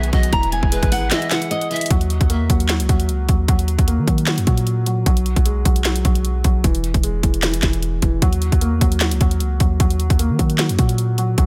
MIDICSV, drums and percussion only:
0, 0, Header, 1, 2, 480
1, 0, Start_track
1, 0, Tempo, 394737
1, 396, Time_signature, 4, 2, 24, 8
1, 13935, End_track
2, 0, Start_track
2, 0, Title_t, "Drums"
2, 42, Note_on_c, 9, 42, 51
2, 156, Note_off_c, 9, 42, 0
2, 156, Note_on_c, 9, 42, 48
2, 157, Note_on_c, 9, 36, 93
2, 277, Note_off_c, 9, 42, 0
2, 279, Note_off_c, 9, 36, 0
2, 283, Note_on_c, 9, 42, 77
2, 396, Note_on_c, 9, 36, 121
2, 397, Note_off_c, 9, 42, 0
2, 397, Note_on_c, 9, 42, 92
2, 518, Note_off_c, 9, 36, 0
2, 518, Note_off_c, 9, 42, 0
2, 524, Note_on_c, 9, 42, 58
2, 635, Note_off_c, 9, 42, 0
2, 635, Note_on_c, 9, 42, 72
2, 757, Note_off_c, 9, 42, 0
2, 763, Note_on_c, 9, 36, 97
2, 875, Note_on_c, 9, 42, 94
2, 885, Note_off_c, 9, 36, 0
2, 997, Note_off_c, 9, 42, 0
2, 1005, Note_on_c, 9, 36, 95
2, 1005, Note_on_c, 9, 42, 71
2, 1117, Note_on_c, 9, 46, 87
2, 1126, Note_off_c, 9, 42, 0
2, 1127, Note_off_c, 9, 36, 0
2, 1238, Note_off_c, 9, 46, 0
2, 1346, Note_on_c, 9, 39, 100
2, 1354, Note_on_c, 9, 42, 90
2, 1356, Note_on_c, 9, 38, 120
2, 1467, Note_off_c, 9, 39, 0
2, 1476, Note_off_c, 9, 42, 0
2, 1478, Note_off_c, 9, 38, 0
2, 1483, Note_on_c, 9, 42, 60
2, 1587, Note_on_c, 9, 39, 80
2, 1596, Note_off_c, 9, 42, 0
2, 1596, Note_on_c, 9, 42, 76
2, 1598, Note_on_c, 9, 38, 96
2, 1708, Note_off_c, 9, 39, 0
2, 1717, Note_off_c, 9, 42, 0
2, 1719, Note_off_c, 9, 38, 0
2, 1724, Note_on_c, 9, 42, 57
2, 1835, Note_off_c, 9, 42, 0
2, 1835, Note_on_c, 9, 42, 70
2, 1957, Note_off_c, 9, 42, 0
2, 1962, Note_on_c, 9, 42, 52
2, 2077, Note_off_c, 9, 42, 0
2, 2077, Note_on_c, 9, 42, 46
2, 2140, Note_off_c, 9, 42, 0
2, 2140, Note_on_c, 9, 42, 59
2, 2204, Note_off_c, 9, 42, 0
2, 2204, Note_on_c, 9, 42, 68
2, 2260, Note_off_c, 9, 42, 0
2, 2260, Note_on_c, 9, 42, 78
2, 2316, Note_off_c, 9, 42, 0
2, 2316, Note_on_c, 9, 36, 113
2, 2316, Note_on_c, 9, 42, 88
2, 2438, Note_off_c, 9, 36, 0
2, 2438, Note_off_c, 9, 42, 0
2, 2444, Note_on_c, 9, 42, 56
2, 2555, Note_off_c, 9, 42, 0
2, 2555, Note_on_c, 9, 42, 57
2, 2677, Note_off_c, 9, 42, 0
2, 2683, Note_on_c, 9, 36, 89
2, 2684, Note_on_c, 9, 42, 59
2, 2794, Note_off_c, 9, 42, 0
2, 2794, Note_on_c, 9, 42, 79
2, 2805, Note_off_c, 9, 36, 0
2, 2916, Note_off_c, 9, 42, 0
2, 3036, Note_on_c, 9, 36, 93
2, 3037, Note_on_c, 9, 42, 87
2, 3157, Note_off_c, 9, 36, 0
2, 3159, Note_off_c, 9, 42, 0
2, 3164, Note_on_c, 9, 42, 54
2, 3265, Note_on_c, 9, 39, 94
2, 3274, Note_off_c, 9, 42, 0
2, 3274, Note_on_c, 9, 42, 90
2, 3276, Note_on_c, 9, 38, 119
2, 3387, Note_off_c, 9, 39, 0
2, 3396, Note_off_c, 9, 42, 0
2, 3398, Note_off_c, 9, 38, 0
2, 3403, Note_on_c, 9, 42, 85
2, 3515, Note_off_c, 9, 42, 0
2, 3515, Note_on_c, 9, 42, 72
2, 3516, Note_on_c, 9, 36, 91
2, 3637, Note_off_c, 9, 42, 0
2, 3638, Note_off_c, 9, 36, 0
2, 3643, Note_on_c, 9, 42, 58
2, 3755, Note_off_c, 9, 42, 0
2, 3755, Note_on_c, 9, 42, 64
2, 3877, Note_off_c, 9, 42, 0
2, 3995, Note_on_c, 9, 42, 73
2, 3997, Note_on_c, 9, 36, 88
2, 4117, Note_off_c, 9, 42, 0
2, 4119, Note_off_c, 9, 36, 0
2, 4236, Note_on_c, 9, 36, 112
2, 4237, Note_on_c, 9, 42, 90
2, 4358, Note_off_c, 9, 36, 0
2, 4358, Note_off_c, 9, 42, 0
2, 4364, Note_on_c, 9, 42, 56
2, 4475, Note_off_c, 9, 42, 0
2, 4475, Note_on_c, 9, 42, 58
2, 4597, Note_off_c, 9, 42, 0
2, 4603, Note_on_c, 9, 36, 91
2, 4604, Note_on_c, 9, 42, 59
2, 4715, Note_off_c, 9, 42, 0
2, 4715, Note_on_c, 9, 42, 80
2, 4724, Note_off_c, 9, 36, 0
2, 4836, Note_off_c, 9, 42, 0
2, 4955, Note_on_c, 9, 36, 93
2, 4956, Note_on_c, 9, 42, 85
2, 5077, Note_off_c, 9, 36, 0
2, 5078, Note_off_c, 9, 42, 0
2, 5083, Note_on_c, 9, 42, 56
2, 5185, Note_on_c, 9, 39, 92
2, 5194, Note_off_c, 9, 42, 0
2, 5194, Note_on_c, 9, 42, 87
2, 5196, Note_on_c, 9, 38, 120
2, 5307, Note_off_c, 9, 39, 0
2, 5315, Note_off_c, 9, 42, 0
2, 5317, Note_off_c, 9, 38, 0
2, 5323, Note_on_c, 9, 42, 85
2, 5435, Note_off_c, 9, 42, 0
2, 5435, Note_on_c, 9, 42, 75
2, 5436, Note_on_c, 9, 36, 93
2, 5556, Note_off_c, 9, 42, 0
2, 5558, Note_off_c, 9, 36, 0
2, 5563, Note_on_c, 9, 42, 56
2, 5675, Note_off_c, 9, 42, 0
2, 5675, Note_on_c, 9, 42, 61
2, 5796, Note_off_c, 9, 42, 0
2, 5915, Note_on_c, 9, 42, 76
2, 6036, Note_off_c, 9, 42, 0
2, 6156, Note_on_c, 9, 36, 114
2, 6156, Note_on_c, 9, 42, 91
2, 6277, Note_off_c, 9, 36, 0
2, 6278, Note_off_c, 9, 42, 0
2, 6284, Note_on_c, 9, 42, 58
2, 6395, Note_off_c, 9, 42, 0
2, 6395, Note_on_c, 9, 42, 56
2, 6516, Note_off_c, 9, 42, 0
2, 6522, Note_on_c, 9, 36, 93
2, 6523, Note_on_c, 9, 42, 60
2, 6634, Note_off_c, 9, 42, 0
2, 6634, Note_on_c, 9, 42, 82
2, 6644, Note_off_c, 9, 36, 0
2, 6755, Note_off_c, 9, 42, 0
2, 6875, Note_on_c, 9, 36, 94
2, 6876, Note_on_c, 9, 42, 87
2, 6997, Note_off_c, 9, 36, 0
2, 6998, Note_off_c, 9, 42, 0
2, 7003, Note_on_c, 9, 42, 55
2, 7105, Note_on_c, 9, 39, 93
2, 7113, Note_off_c, 9, 42, 0
2, 7113, Note_on_c, 9, 42, 86
2, 7115, Note_on_c, 9, 38, 117
2, 7226, Note_off_c, 9, 39, 0
2, 7235, Note_off_c, 9, 42, 0
2, 7237, Note_off_c, 9, 38, 0
2, 7242, Note_on_c, 9, 42, 84
2, 7355, Note_off_c, 9, 42, 0
2, 7355, Note_on_c, 9, 42, 73
2, 7356, Note_on_c, 9, 36, 92
2, 7476, Note_off_c, 9, 42, 0
2, 7478, Note_off_c, 9, 36, 0
2, 7483, Note_on_c, 9, 42, 58
2, 7595, Note_off_c, 9, 42, 0
2, 7595, Note_on_c, 9, 42, 64
2, 7717, Note_off_c, 9, 42, 0
2, 7835, Note_on_c, 9, 42, 74
2, 7837, Note_on_c, 9, 36, 89
2, 7957, Note_off_c, 9, 42, 0
2, 7959, Note_off_c, 9, 36, 0
2, 8076, Note_on_c, 9, 36, 113
2, 8076, Note_on_c, 9, 42, 88
2, 8198, Note_off_c, 9, 36, 0
2, 8198, Note_off_c, 9, 42, 0
2, 8204, Note_on_c, 9, 42, 55
2, 8315, Note_off_c, 9, 42, 0
2, 8315, Note_on_c, 9, 42, 55
2, 8436, Note_off_c, 9, 42, 0
2, 8443, Note_on_c, 9, 36, 92
2, 8444, Note_on_c, 9, 42, 60
2, 8554, Note_off_c, 9, 42, 0
2, 8554, Note_on_c, 9, 42, 79
2, 8564, Note_off_c, 9, 36, 0
2, 8676, Note_off_c, 9, 42, 0
2, 8795, Note_on_c, 9, 36, 93
2, 8797, Note_on_c, 9, 42, 85
2, 8917, Note_off_c, 9, 36, 0
2, 8918, Note_off_c, 9, 42, 0
2, 8923, Note_on_c, 9, 42, 55
2, 9025, Note_on_c, 9, 39, 91
2, 9034, Note_off_c, 9, 42, 0
2, 9034, Note_on_c, 9, 42, 88
2, 9036, Note_on_c, 9, 38, 120
2, 9147, Note_off_c, 9, 39, 0
2, 9155, Note_off_c, 9, 42, 0
2, 9157, Note_off_c, 9, 38, 0
2, 9163, Note_on_c, 9, 42, 84
2, 9267, Note_on_c, 9, 39, 78
2, 9275, Note_off_c, 9, 42, 0
2, 9275, Note_on_c, 9, 42, 73
2, 9276, Note_on_c, 9, 36, 91
2, 9277, Note_on_c, 9, 38, 97
2, 9388, Note_off_c, 9, 39, 0
2, 9397, Note_off_c, 9, 42, 0
2, 9398, Note_off_c, 9, 36, 0
2, 9399, Note_off_c, 9, 38, 0
2, 9403, Note_on_c, 9, 42, 56
2, 9515, Note_off_c, 9, 42, 0
2, 9515, Note_on_c, 9, 42, 65
2, 9637, Note_off_c, 9, 42, 0
2, 9755, Note_on_c, 9, 42, 72
2, 9757, Note_on_c, 9, 36, 88
2, 9877, Note_off_c, 9, 42, 0
2, 9879, Note_off_c, 9, 36, 0
2, 9996, Note_on_c, 9, 36, 115
2, 9996, Note_on_c, 9, 42, 90
2, 10118, Note_off_c, 9, 36, 0
2, 10118, Note_off_c, 9, 42, 0
2, 10124, Note_on_c, 9, 42, 56
2, 10235, Note_off_c, 9, 42, 0
2, 10235, Note_on_c, 9, 42, 58
2, 10357, Note_off_c, 9, 42, 0
2, 10363, Note_on_c, 9, 36, 91
2, 10364, Note_on_c, 9, 42, 60
2, 10474, Note_off_c, 9, 42, 0
2, 10474, Note_on_c, 9, 42, 79
2, 10485, Note_off_c, 9, 36, 0
2, 10596, Note_off_c, 9, 42, 0
2, 10716, Note_on_c, 9, 36, 94
2, 10716, Note_on_c, 9, 42, 84
2, 10837, Note_off_c, 9, 36, 0
2, 10838, Note_off_c, 9, 42, 0
2, 10843, Note_on_c, 9, 42, 57
2, 10945, Note_on_c, 9, 39, 96
2, 10954, Note_off_c, 9, 42, 0
2, 10954, Note_on_c, 9, 42, 89
2, 10956, Note_on_c, 9, 38, 121
2, 11067, Note_off_c, 9, 39, 0
2, 11076, Note_off_c, 9, 42, 0
2, 11078, Note_off_c, 9, 38, 0
2, 11083, Note_on_c, 9, 42, 84
2, 11195, Note_off_c, 9, 42, 0
2, 11195, Note_on_c, 9, 42, 74
2, 11196, Note_on_c, 9, 36, 94
2, 11317, Note_off_c, 9, 42, 0
2, 11318, Note_off_c, 9, 36, 0
2, 11323, Note_on_c, 9, 42, 57
2, 11435, Note_off_c, 9, 42, 0
2, 11435, Note_on_c, 9, 42, 66
2, 11557, Note_off_c, 9, 42, 0
2, 11675, Note_on_c, 9, 42, 73
2, 11677, Note_on_c, 9, 36, 89
2, 11797, Note_off_c, 9, 42, 0
2, 11799, Note_off_c, 9, 36, 0
2, 11916, Note_on_c, 9, 36, 116
2, 11916, Note_on_c, 9, 42, 86
2, 12038, Note_off_c, 9, 36, 0
2, 12038, Note_off_c, 9, 42, 0
2, 12044, Note_on_c, 9, 42, 55
2, 12155, Note_off_c, 9, 42, 0
2, 12155, Note_on_c, 9, 42, 56
2, 12277, Note_off_c, 9, 42, 0
2, 12283, Note_on_c, 9, 36, 93
2, 12285, Note_on_c, 9, 42, 61
2, 12394, Note_off_c, 9, 42, 0
2, 12394, Note_on_c, 9, 42, 81
2, 12405, Note_off_c, 9, 36, 0
2, 12516, Note_off_c, 9, 42, 0
2, 12636, Note_on_c, 9, 36, 95
2, 12637, Note_on_c, 9, 42, 87
2, 12757, Note_off_c, 9, 36, 0
2, 12758, Note_off_c, 9, 42, 0
2, 12764, Note_on_c, 9, 42, 57
2, 12866, Note_on_c, 9, 39, 94
2, 12874, Note_off_c, 9, 42, 0
2, 12874, Note_on_c, 9, 42, 90
2, 12876, Note_on_c, 9, 38, 113
2, 12987, Note_off_c, 9, 39, 0
2, 12996, Note_off_c, 9, 42, 0
2, 12998, Note_off_c, 9, 38, 0
2, 13003, Note_on_c, 9, 42, 84
2, 13115, Note_off_c, 9, 42, 0
2, 13115, Note_on_c, 9, 42, 74
2, 13116, Note_on_c, 9, 36, 92
2, 13237, Note_off_c, 9, 42, 0
2, 13238, Note_off_c, 9, 36, 0
2, 13243, Note_on_c, 9, 42, 57
2, 13355, Note_off_c, 9, 42, 0
2, 13355, Note_on_c, 9, 42, 63
2, 13476, Note_off_c, 9, 42, 0
2, 13595, Note_on_c, 9, 42, 73
2, 13717, Note_off_c, 9, 42, 0
2, 13836, Note_on_c, 9, 36, 114
2, 13836, Note_on_c, 9, 42, 86
2, 13935, Note_off_c, 9, 36, 0
2, 13935, Note_off_c, 9, 42, 0
2, 13935, End_track
0, 0, End_of_file